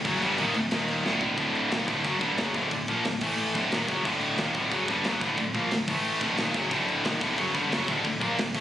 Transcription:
0.05 fingered electric bass F#1, distorted electric guitar F#2 C#3 F#3, kick, crash
0.22 fingered electric bass G1, distorted electric guitar G2 D3 G3, crash
0.38 fingered electric bass D#1, distorted electric guitar D#2 A#2 D#3, crash
0.54 fingered electric bass D1, distorted electric guitar D2 A2, crash
0.71 fingered electric bass D#1, distorted electric guitar D#2 A#2 D#3, snare, crash
0.88 crash
1.05 fingered electric bass D1, distorted electric guitar D2 A2 D3, snare
1.21 floor tom
1.38 fingered electric bass D1, distorted electric guitar D2 A2 D3, kick, crash
1.55 crash
1.71 fingered electric bass D#1, distorted electric guitar D#2 A#2 D#3, snare, crash
1.87 fingered electric bass D1, distorted electric guitar D2 A2 D3, kick, crash
2.04 fingered electric bass F#1, distorted electric guitar F#2 C#3 F#3, kick, crash
2.20 fingered electric bass G1, distorted electric guitar G2 D3 G3, kick, crash
2.37 fingered electric bass F#1, distorted electric guitar F#2 C#3 F#3, snare, crash
2.53 fingered electric bass D1, distorted electric guitar D2 A2 D3, kick, crash
2.71 fingered electric bass D1, distorted electric guitar D2 A2, kick, crash
2.88 fingered electric bass A#1, distorted electric guitar A#2 F3 A#3, kick, crash
3.05 fingered electric bass D1, distorted electric guitar D2 A2, snare, crash
3.21 fingered electric bass A1, distorted electric guitar A2 E3 A3, kick, crash
3.38 crash
3.55 fingered electric bass D1, distorted electric guitar D2 A2 D3, kick, crash
3.72 fingered electric bass D#1, distorted electric guitar D#2 A#2 D#3, snare, crash
3.88 fingered electric bass F#1, distorted electric guitar F#2 C#3 F#3, kick, crash
4.05 fingered electric bass D1, distorted electric guitar D2 A2 D3, kick, crash
4.21 crash
4.38 fingered electric bass D#1, distorted electric guitar D#2 A#2 D#3, snare, crash
4.54 fingered electric bass D1, distorted electric guitar D2 A2 D3, kick, crash
4.71 fingered electric bass F#1, distorted electric guitar F#2 C#3 F#3, kick, crash
4.88 fingered electric bass G1, distorted electric guitar G2 D3 G3, kick, crash
5.04 fingered electric bass F#1, distorted electric guitar F#2 C#3 F#3, snare, crash
5.21 fingered electric bass D1, distorted electric guitar D2 A2 D3, kick, crash
5.37 fingered electric bass D1, distorted electric guitar D2 A2, kick, crash
5.54 fingered electric bass A#1, distorted electric guitar A#2 F3 A#3, kick, crash
5.71 fingered electric bass D1, distorted electric guitar D2 A2, snare, crash
5.88 fingered electric bass A1, distorted electric guitar A2 E3 A3, kick, crash
6.05 crash
6.20 fingered electric bass D1, distorted electric guitar D2 A2 D3, kick, crash
6.38 fingered electric bass D#1, distorted electric guitar D#2 A#2 D#3, snare, crash
6.54 fingered electric bass F#1, distorted electric guitar F#2 C#3 F#3, kick, crash
6.71 fingered electric bass D1, distorted electric guitar D2 A2 D3, kick, crash
6.89 crash
7.05 fingered electric bass D#1, distorted electric guitar D#2 A#2 D#3, snare, crash
7.21 fingered electric bass D1, distorted electric guitar D2 A2 D3, kick, crash
7.38 fingered electric bass F#1, distorted electric guitar F#2 C#3 F#3, kick, crash
7.55 fingered electric bass G1, distorted electric guitar G2 D3 G3, kick, crash
7.71 fingered electric bass F#1, distorted electric guitar F#2 C#3 F#3, snare, crash
7.88 fingered electric bass D1, distorted electric guitar D2 A2 D3, kick, crash
8.05 fingered electric bass D1, distorted electric guitar D2 A2, kick, crash
8.20 fingered electric bass A#1, distorted electric guitar A#2 F3 A#3, kick, crash
8.38 fingered electric bass D1, distorted electric guitar D2 A2, snare, crash
8.55 fingered electric bass A1, distorted electric guitar A2 E3 A3, kick, crash

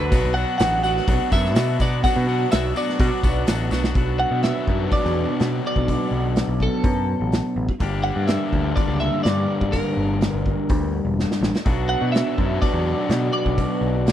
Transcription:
Already playing: distorted electric guitar F#3 A3 D4 F#4, clean electric guitar B4
0.00 picked electric bass D2
0.11 picked electric bass B1, distorted electric guitar B2 F#3 B3 D4 F#4, kick, open hi-hat, tambourine
0.24 picked electric bass B1
0.34 distorted electric guitar B2 F#3 B3 D4, clean electric guitar F#5, tambourine
0.38 distorted electric guitar F#4
0.58 picked electric bass A1, distorted electric guitar B2 F#3 B3 D4 F#4, clean electric guitar F#5, snare, open hi-hat, tambourine
0.83 distorted electric guitar B2 F#3 B3 D4 F#4, clean electric guitar F#5, tambourine
0.97 snare
1.07 picked electric bass B1, distorted electric guitar B2 F#3 B3 D4 F#4, kick, open hi-hat
1.30 picked electric bass F#2, distorted electric guitar B2 F#3 B3 D4 F#4, clean electric guitar E5, kick, tambourine
1.45 snare
1.55 distorted electric guitar B2 F#3 B3 D4 F#4, picked electric bass B2, snare, open hi-hat, tambourine
1.79 distorted electric guitar B2 F#3 B3 D4 F#4, clean electric guitar D5, kick, tambourine
2.03 distorted electric guitar B2 F#3 B3 D4 F#4, clean electric guitar F#5, kick, open hi-hat, tambourine
2.16 picked electric bass B2
2.26 distorted electric guitar B2 F#3 B3 D4 F#4, tambourine
2.49 distorted electric guitar B2 F#3 B3 D4 F#4, clean electric guitar E5, snare, open hi-hat, tambourine
2.53 picked electric bass B1
2.74 distorted electric guitar B2 F#3 B3 D4 F#4, clean electric guitar D5, tambourine
2.89 snare
2.99 distorted electric guitar B2 F#3 B3 D4 F#4, picked electric bass B2, kick, open hi-hat, tambourine
3.23 picked electric bass B1, distorted electric guitar B2 F#3 B3 D4 F#4, kick, tambourine
3.47 picked electric bass A1, distorted electric guitar B2 F#3 B3 D4 F#4, snare, open hi-hat, tambourine
3.70 picked electric bass B1, distorted electric guitar B2 F#3 B3 D4 F#4, snare, tambourine
3.84 snare
3.94 picked electric bass B1, distorted electric guitar B2 F#3 B3 D4 F#4, kick, open hi-hat
4.20 clean electric guitar F#5
4.31 picked electric bass B2
4.43 clean electric guitar E5, snare, open hi-hat
4.67 picked electric bass F#2, kick
4.91 clean electric guitar D5, kick, open hi-hat
5.05 picked electric bass E2, snare
5.40 picked electric bass B2, snare, open hi-hat
5.67 clean electric guitar D5
5.76 picked electric bass B1, kick
5.88 kick, open hi-hat
6.11 picked electric bass B1
6.36 snare, open hi-hat
6.48 picked electric bass B1
6.60 clean electric guitar A4, kick
6.84 picked electric bass F#2, kick, open hi-hat
7.21 picked electric bass A1
7.32 snare, open hi-hat
7.56 picked electric bass A1
7.69 kick
7.80 picked electric bass G1, distorted electric guitar G2 D3 G3 A#3 D4 G4, kick, open hi-hat
8.04 clean electric guitar F#5
8.16 picked electric bass G2
8.28 clean electric guitar E5, snare, open hi-hat
8.53 picked electric bass D2, kick
8.76 clean electric guitar D5, kick, open hi-hat
8.88 picked electric bass C#2
9.00 clean electric guitar E5
9.23 picked electric bass G2, clean electric guitar D5, snare, open hi-hat
9.61 picked electric bass G1, kick
9.72 clean electric guitar A#4, kick, open hi-hat
9.97 picked electric bass G1
10.21 snare, open hi-hat
10.34 picked electric bass G1
10.46 kick
10.69 picked electric bass D2, kick, open hi-hat
11.05 picked electric bass E1
11.19 snare
11.31 snare
11.41 picked electric bass A1, snare
11.56 snare
11.64 picked electric bass B1, distorted electric guitar B2 F#3 B3 D4 F#4, kick, open hi-hat
11.89 clean electric guitar F#5
12.02 picked electric bass B2
12.12 clean electric guitar E5, snare, open hi-hat
12.38 picked electric bass F#2, kick
12.62 clean electric guitar D5, kick, open hi-hat
12.73 picked electric bass E2
13.09 picked electric bass B2, snare, open hi-hat
13.33 clean electric guitar D5
13.46 picked electric bass B1, kick
13.58 kick, open hi-hat
13.81 picked electric bass B1
14.07 snare, open hi-hat

